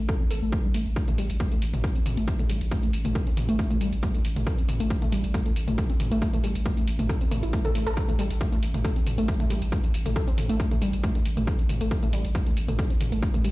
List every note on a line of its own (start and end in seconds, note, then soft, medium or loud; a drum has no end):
0.09 0.19 A4 medium
0.09 kick loud
0.20 0.26 C4 medium
0.31 0.42 A1 loud
0.31 0.41 A4 loud
0.31 open hi-hat loud
0.42 0.52 A1 medium
0.42 0.51 A3 medium
0.52 0.59 A#3 medium
0.52 kick loud
0.64 0.70 G3 medium
0.74 0.85 A1 loud
0.74 0.78 A3 medium
0.74 open hi-hat loud
0.86 0.96 A1 medium
0.96 1.03 A3 medium
0.96 kick loud
0.96 closed hi-hat medium
1.08 1.11 A3 loud
1.08 closed hi-hat medium
1.08 mid tom medium
1.18 1.29 A1 loud
1.18 1.22 G3 loud
1.18 open hi-hat loud
1.30 1.40 A1 medium
1.30 closed hi-hat medium
1.40 1.47 A3 medium
1.40 kick loud
1.40 closed hi-hat soft
1.40 mid tom medium
1.52 1.58 A3 medium
1.52 closed hi-hat soft
1.62 1.73 A1 medium
1.62 open hi-hat loud
1.73 1.84 A1 medium
1.73 1.77 A3 medium
1.73 closed hi-hat soft
1.73 mid tom medium
1.84 1.94 A4 medium
1.84 kick loud
1.84 closed hi-hat medium
1.95 2.02 C4 medium
1.95 closed hi-hat soft
2.06 2.17 A1 loud
2.06 mid tom medium
2.06 open hi-hat loud
2.17 2.27 A1 medium
2.17 2.23 A3 loud
2.17 closed hi-hat soft
2.28 2.34 A3 medium
2.28 kick loud
2.28 closed hi-hat medium
2.39 2.43 A3 loud
2.39 closed hi-hat soft
2.39 mid tom medium
2.50 2.60 A1 loud
2.50 2.54 G3 loud
2.50 open hi-hat loud
2.61 2.71 A1 medium
2.61 closed hi-hat soft
2.71 2.78 A3 medium
2.71 kick loud
2.71 closed hi-hat medium
2.71 mid tom medium
2.83 2.89 A3 medium
2.83 closed hi-hat soft
2.93 3.04 A1 loud
2.93 open hi-hat loud
3.05 3.15 A1 medium
3.05 3.09 A3 medium
3.05 closed hi-hat medium
3.05 mid tom medium
3.15 3.25 A4 medium
3.15 kick loud
3.15 closed hi-hat soft
3.27 3.33 C4 medium
3.27 closed hi-hat soft
3.37 3.48 A1 loud
3.37 mid tom medium
3.37 open hi-hat loud
3.49 3.59 A1 medium
3.49 3.55 A3 loud
3.49 closed hi-hat soft
3.59 3.66 A3 medium
3.59 kick loud
3.59 closed hi-hat medium
3.71 3.74 A3 loud
3.71 closed hi-hat soft
3.71 mid tom medium
3.81 3.92 A1 loud
3.81 3.85 G3 loud
3.81 open hi-hat loud
3.92 4.03 A1 medium
3.92 closed hi-hat soft
4.03 4.10 A3 medium
4.03 kick loud
4.03 closed hi-hat medium
4.03 mid tom medium
4.14 4.20 A3 medium
4.14 closed hi-hat soft
4.25 4.36 A1 loud
4.25 open hi-hat loud
4.36 4.46 A1 medium
4.36 4.40 A3 medium
4.36 closed hi-hat soft
4.36 mid tom medium
4.47 4.57 A4 medium
4.47 kick loud
4.47 closed hi-hat medium
4.58 4.64 C4 medium
4.58 closed hi-hat medium
4.69 4.79 A1 loud
4.69 mid tom medium
4.69 open hi-hat loud
4.80 4.90 A1 medium
4.80 4.86 A3 loud
4.80 closed hi-hat medium
4.90 4.97 A3 medium
4.90 kick loud
4.90 closed hi-hat soft
5.02 5.06 A3 loud
5.02 closed hi-hat medium
5.02 mid tom medium
5.12 5.23 A1 loud
5.12 5.16 G3 loud
5.12 open hi-hat loud
5.24 5.34 A1 medium
5.24 closed hi-hat soft
5.34 5.41 A3 medium
5.34 kick loud
5.34 closed hi-hat medium
5.34 mid tom medium
5.46 5.52 A3 medium
5.46 closed hi-hat soft
5.56 5.67 A1 loud
5.56 open hi-hat loud
5.68 5.78 A1 medium
5.68 5.71 A3 medium
5.68 closed hi-hat soft
5.68 mid tom medium
5.78 5.88 A4 medium
5.78 kick loud
5.78 closed hi-hat medium
5.90 5.96 C4 medium
5.90 closed hi-hat medium
6.00 6.11 A1 loud
6.00 mid tom medium
6.00 open hi-hat loud
6.11 6.22 A1 medium
6.11 6.18 A3 loud
6.11 closed hi-hat soft
6.22 6.29 A3 medium
6.22 kick loud
6.22 closed hi-hat medium
6.33 6.37 A3 loud
6.33 closed hi-hat medium
6.33 mid tom medium
6.44 6.55 A1 loud
6.44 6.48 G3 loud
6.44 open hi-hat loud
6.55 6.65 A1 medium
6.55 closed hi-hat medium
6.66 6.72 A3 medium
6.66 kick loud
6.66 closed hi-hat medium
6.66 mid tom medium
6.77 6.83 A3 medium
6.77 closed hi-hat medium
6.88 6.98 A1 loud
6.88 open hi-hat loud
6.99 7.09 A1 medium
6.99 7.03 A3 medium
6.99 closed hi-hat medium
6.99 mid tom medium
7.09 7.20 A4 medium
7.09 kick loud
7.09 closed hi-hat medium
7.21 7.27 C4 medium
7.21 closed hi-hat soft
7.31 7.42 A1 loud
7.31 7.38 A3 loud
7.31 mid tom medium
7.31 open hi-hat loud
7.43 7.53 A1 medium
7.43 7.49 E4 medium
7.43 closed hi-hat medium
7.53 7.60 A3 medium
7.53 kick loud
7.53 closed hi-hat medium
7.65 7.68 A4 loud
7.65 closed hi-hat medium
7.65 mid tom medium
7.75 7.86 A1 medium
7.75 7.82 A3 medium
7.75 open hi-hat loud
7.87 7.97 A1 medium
7.87 7.90 A4 loud
7.87 closed hi-hat medium
7.97 8.04 A3 medium
7.97 kick loud
7.97 closed hi-hat medium
8.09 8.12 A3 loud
8.09 closed hi-hat medium
8.09 mid tom medium
8.19 8.30 A1 loud
8.19 8.23 G3 loud
8.19 open hi-hat loud
8.30 8.41 A1 medium
8.30 closed hi-hat medium
8.41 8.48 A3 medium
8.41 kick loud
8.41 closed hi-hat medium
8.41 mid tom medium
8.52 8.58 A3 medium
8.52 closed hi-hat medium
8.63 8.74 A1 loud
8.63 open hi-hat loud
8.74 8.84 A1 medium
8.74 8.78 A3 medium
8.74 closed hi-hat medium
8.74 mid tom medium
8.85 8.95 A4 medium
8.85 kick loud
8.85 closed hi-hat medium
8.96 9.02 C4 medium
8.96 closed hi-hat medium
9.06 9.17 A1 loud
9.06 mid tom medium
9.06 open hi-hat loud
9.18 9.28 A1 medium
9.18 9.24 A3 loud
9.18 closed hi-hat medium
9.28 9.35 A3 medium
9.28 kick loud
9.28 closed hi-hat medium
9.40 9.44 A3 loud
9.40 closed hi-hat medium
9.40 mid tom medium
9.50 9.61 A1 loud
9.50 9.54 G3 loud
9.50 open hi-hat loud
9.62 9.72 A1 medium
9.62 closed hi-hat medium
9.72 9.79 A3 medium
9.72 kick loud
9.72 closed hi-hat medium
9.72 mid tom medium
9.84 9.90 A3 medium
9.84 closed hi-hat medium
9.94 10.05 A1 loud
9.94 open hi-hat loud
10.06 10.16 A1 medium
10.06 10.09 A3 medium
10.06 closed hi-hat medium
10.06 mid tom medium
10.16 10.26 A4 medium
10.16 kick loud
10.16 closed hi-hat medium
10.27 10.34 C4 medium
10.27 closed hi-hat medium
10.38 10.49 A1 medium
10.38 mid tom medium
10.38 open hi-hat loud
10.49 10.60 A1 medium
10.49 10.56 A3 loud
10.49 closed hi-hat medium
10.60 10.67 A3 medium
10.60 kick loud
10.60 closed hi-hat medium
10.71 10.75 A3 loud
10.71 closed hi-hat medium
10.71 mid tom medium
10.82 10.93 A1 loud
10.82 10.86 G3 loud
10.82 open hi-hat loud
10.93 11.03 A1 medium
10.93 closed hi-hat medium
11.04 11.10 A3 medium
11.04 kick loud
11.04 closed hi-hat medium
11.04 mid tom medium
11.15 11.21 A3 medium
11.15 closed hi-hat medium
11.25 11.36 A1 loud
11.25 open hi-hat loud
11.37 11.47 A1 medium
11.37 11.41 A3 medium
11.37 closed hi-hat medium
11.37 mid tom medium
11.47 11.58 A4 medium
11.47 kick loud
11.47 closed hi-hat medium
11.59 11.65 C4 medium
11.59 closed hi-hat medium
11.69 11.80 A1 loud
11.69 mid tom medium
11.69 open hi-hat loud
11.81 11.91 A1 medium
11.81 11.87 A3 loud
11.81 closed hi-hat medium
11.91 11.98 A3 medium
11.91 kick loud
11.91 closed hi-hat medium
12.03 12.06 A3 loud
12.03 closed hi-hat medium
12.03 mid tom medium
12.13 12.24 A1 loud
12.13 12.17 G3 loud
12.13 open hi-hat loud
12.25 12.35 A1 medium
12.25 closed hi-hat medium
12.35 12.42 A3 medium
12.35 kick loud
12.35 closed hi-hat medium
12.35 mid tom medium
12.46 12.53 A3 medium
12.46 closed hi-hat medium
12.57 12.68 A1 loud
12.57 open hi-hat loud
12.68 12.79 A1 medium
12.68 12.72 A3 medium
12.68 closed hi-hat medium
12.68 mid tom medium
12.79 12.89 A4 medium
12.79 kick loud
12.79 closed hi-hat medium
12.90 12.96 C4 medium
12.90 closed hi-hat medium
13.01 13.12 A1 loud
13.01 mid tom medium
13.01 open hi-hat loud
13.12 13.22 A1 medium
13.12 13.18 A3 loud
13.12 closed hi-hat medium
13.23 13.29 A3 medium
13.23 kick loud
13.23 closed hi-hat medium
13.34 13.38 A3 loud
13.34 closed hi-hat medium
13.34 mid tom medium
13.44 13.52 A1 loud
13.44 13.49 G3 loud
13.44 open hi-hat loud